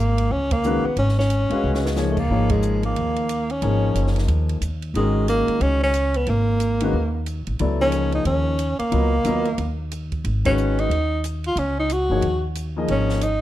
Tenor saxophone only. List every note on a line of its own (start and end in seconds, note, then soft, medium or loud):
0.00 0.33 A#3 medium
0.32 0.54 C#4 medium
0.53 0.88 A#3 medium
0.86 0.98 B3 medium
0.99 1.17 C#4 medium
1.19 1.85 C#4 medium
2.10 2.21 A3 medium
2.19 2.53 A#3 medium
2.51 2.84 G#3 medium
2.85 3.53 A#3 medium
3.51 4.17 C#4 medium
4.96 5.27 G#3 medium
5.29 5.64 A#3 medium
5.62 5.83 C#4 medium
5.84 6.18 C#4 medium
6.17 6.31 B3 medium
6.30 7.28 A#3 medium
7.82 8.12 C#4 medium
8.15 8.26 D#4 medium
8.27 8.76 C#4 medium
8.79 9.75 A#3 medium
10.46 10.81 C#4 medium
10.80 11.25 D#4 medium
11.47 11.61 F4 medium
11.59 11.78 C#4 medium
11.80 11.94 D#4 medium
11.93 12.45 F#4 medium
12.91 13.25 C#4 medium
13.23 13.41 D#4 medium